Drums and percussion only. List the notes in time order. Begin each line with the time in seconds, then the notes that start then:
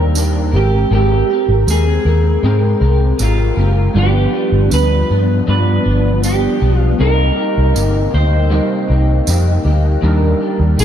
0.15 tambourine
1.68 tambourine
3.19 tambourine
4.71 tambourine
6.24 tambourine
7.76 tambourine
9.27 tambourine
10.79 tambourine